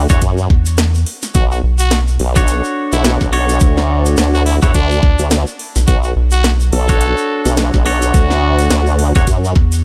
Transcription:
0.09 E2 D4 F#4 A4 C#5, kick, closed hi-hat, shaker
0.21 F#2, kick, closed hi-hat, shaker
0.38 shaker
0.50 E2, kick, snare
0.66 closed hi-hat, shaker
0.78 snare, closed hi-hat, shaker
0.95 shaker
1.06 open hi-hat
1.22 snare, closed hi-hat, shaker
1.35 B1 F#4, kick, closed hi-hat, shaker
1.51 F#4, shaker
1.64 B1
1.79 F#4, closed hi-hat, shaker
1.91 snare, closed hi-hat, shaker
2.07 shaker
2.19 B1, open hi-hat
2.36 D4 F#4 A4 C#5, kick, closed hi-hat, shaker
2.47 closed hi-hat, shaker
2.64 shaker
2.93 B1 E4, snare, closed hi-hat, shaker
3.04 snare, closed hi-hat, shaker
3.21 B1, kick, snare, shaker
3.32 D4 F#4 A4 C#5, open hi-hat
3.49 closed hi-hat, shaker
3.60 D2, kick, closed hi-hat, shaker
3.77 snare, shaker
4.06 closed hi-hat, shaker
4.17 D2, snare, closed hi-hat, shaker
4.34 F#4, shaker
4.46 E4, open hi-hat
4.62 E2 D4 E4 F#4 A4 C#5, kick, shaker
4.74 D2 D4, kick, closed hi-hat, shaker
4.91 shaker
5.03 D2, kick, snare
5.19 D2, closed hi-hat, shaker
5.31 snare, closed hi-hat, shaker
5.47 shaker
5.59 open hi-hat
5.76 B1, snare, closed hi-hat, shaker
5.87 B1 F#4, kick, closed hi-hat, shaker
6.03 F#4, shaker
6.16 B1
6.31 F#4, closed hi-hat, shaker
6.44 snare, closed hi-hat, shaker
6.60 shaker
6.72 B1 A4, open hi-hat
6.89 D4 F#4 A4 C#5, kick, closed hi-hat, shaker
7.01 closed hi-hat, shaker
7.17 shaker
7.45 B1, snare, closed hi-hat, shaker
7.57 snare, closed hi-hat, shaker
7.73 B1, kick, snare, shaker
7.86 D4 F#4 A4 C#5, open hi-hat
8.02 closed hi-hat, shaker
8.14 D2 F#4, kick, closed hi-hat, shaker
8.30 snare, shaker
8.59 closed hi-hat, shaker
8.70 D2, snare, closed hi-hat, shaker
8.87 shaker
8.99 open hi-hat
9.15 E2 D4 F#4 A4 C#5, kick, closed hi-hat, shaker
9.27 F#2, kick, closed hi-hat, shaker
9.44 shaker
9.55 E2, kick, snare
9.72 closed hi-hat, shaker

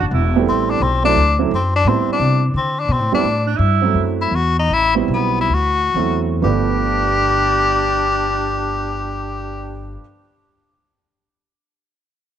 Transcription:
0.00 F#1
0.11 E1 E4
0.36 G3 A3 B3 C4 E4
0.46 A1 C4
0.70 D4
0.80 B1 C4
1.03 F#3 A3 C4 D4 E4
1.16 D2
1.39 F#3 A3 C4 E4
1.51 F#2 C4
1.76 D4
1.85 A2 G3 B3 C4 E4
2.07 muted upright bass stroke
2.12 D4
2.19 C3
2.54 D3 C4
2.80 D4
2.88 B2
2.93 C4
3.00 A2
3.12 F#2 G3 B3 C4 D4 E4
3.23 A2
3.46 D4
3.58 G2 E4
3.81 F#3 A3 C4 E4
3.94 F#2
4.21 E4
4.31 E2 F#4
4.59 D#4
4.69 A1
4.73 E4
4.95 G3 B3 C4 E4
5.08 B1
5.14 B3
5.41 E4
5.49 D2
5.54 F#4
5.94 E2 F#3 A3 C4 E4
6.42 G1 G2 D3 F3 A3 B3 D4 G4

